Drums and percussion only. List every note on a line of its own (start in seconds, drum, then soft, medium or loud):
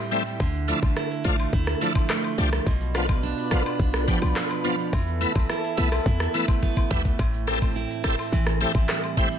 0.12 closed hi-hat medium
0.12 cabasa medium
0.12 shaker soft
0.26 shaker medium
0.40 kick loud
0.40 high woodblock medium
0.40 shaker medium
0.54 shaker medium
0.68 closed hi-hat medium
0.68 cabasa medium
0.68 shaker medium
0.82 kick medium
0.82 high woodblock medium
0.82 shaker medium
0.96 cross-stick medium
0.96 shaker medium
1.11 shaker medium
1.24 closed hi-hat medium
1.24 cabasa medium
1.24 shaker medium
1.39 high woodblock medium
1.39 shaker medium
1.53 kick medium
1.53 shaker medium
1.67 cross-stick medium
1.67 shaker medium
1.81 closed hi-hat medium
1.81 cabasa medium
1.81 shaker soft
1.95 kick loud
1.95 high woodblock medium
1.95 shaker medium
2.10 cross-stick loud
2.10 clap loud
2.10 shaker medium
2.24 high woodblock medium
2.24 shaker medium
2.38 closed hi-hat medium
2.38 cabasa medium
2.38 shaker soft
2.52 cross-stick loud
2.52 shaker medium
2.66 kick loud
2.66 high woodblock medium
2.66 shaker medium
2.81 shaker medium
2.95 cross-stick loud
2.95 closed hi-hat medium
2.95 cabasa medium
2.95 shaker medium
3.09 kick medium
3.09 high woodblock medium
3.09 shaker medium
3.23 shaker medium
3.37 shaker medium
3.51 cross-stick loud
3.51 closed hi-hat medium
3.51 cabasa medium
3.51 shaker medium
3.66 high woodblock medium
3.66 shaker medium
3.79 kick medium
3.79 shaker medium
3.94 cross-stick loud
3.94 shaker medium
4.08 kick loud
4.08 closed hi-hat medium
4.08 cabasa medium
4.08 shaker soft
4.22 high woodblock medium
4.22 shaker medium
4.36 cross-stick loud
4.36 clap medium
4.36 shaker medium
4.50 high woodblock medium
4.50 shaker medium
4.65 closed hi-hat medium
4.65 cabasa medium
4.65 shaker medium
4.79 shaker medium
4.93 kick loud
4.93 high woodblock medium
4.93 shaker medium
5.07 shaker medium
5.21 closed hi-hat medium
5.21 cabasa medium
5.21 shaker medium
5.35 kick loud
5.35 high woodblock medium
5.35 shaker medium
5.49 cross-stick medium
5.49 shaker medium
5.64 shaker medium
5.78 closed hi-hat medium
5.78 cabasa medium
5.78 shaker medium
5.92 cross-stick medium
5.92 high woodblock medium
5.92 shaker medium
6.06 kick loud
6.06 shaker medium
6.20 cross-stick medium
6.20 shaker medium
6.34 closed hi-hat medium
6.34 cabasa medium
6.34 shaker soft
6.48 kick loud
6.48 high woodblock medium
6.48 shaker medium
6.63 kick medium
6.63 shaker medium
6.77 kick medium
6.77 high woodblock medium
6.77 shaker medium
6.91 kick loud
6.91 closed hi-hat medium
6.91 cabasa medium
6.91 shaker soft
7.05 kick loud
7.05 shaker medium
7.19 kick loud
7.19 high woodblock medium
7.19 shaker medium
7.33 shaker medium
7.48 cross-stick loud
7.48 closed hi-hat medium
7.48 cabasa medium
7.48 shaker medium
7.62 kick medium
7.62 high woodblock medium
7.62 shaker medium
7.76 shaker medium
7.90 shaker medium
8.04 cross-stick loud
8.04 closed hi-hat medium
8.04 cabasa medium
8.04 shaker medium
8.19 high woodblock medium
8.19 shaker medium
8.32 shaker medium
8.46 cross-stick medium
8.46 shaker medium
8.61 closed hi-hat medium
8.61 cabasa medium
8.61 shaker soft
8.75 kick loud
8.75 high woodblock medium
8.75 shaker medium
8.89 cross-stick loud
8.89 clap medium
8.89 shaker medium
9.03 high woodblock medium
9.03 shaker medium
9.17 kick loud
9.17 closed hi-hat medium
9.17 cabasa medium
9.17 shaker soft
9.31 shaker medium